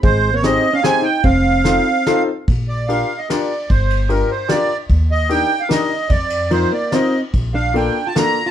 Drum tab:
RD |------|------|x-x-x-|xxx-x-|
HH |x-x-x-|x-x-x-|------|------|
SD |--o-o-|--o-o-|----o-|----o-|
BD |o-----|o-----|o-----|o-----|

RD |x-x-x-|xxx-x-|x-x-x-|
HH |------|------|------|
SD |----o-|----o-|----o-|
BD |o-----|o-----|o-----|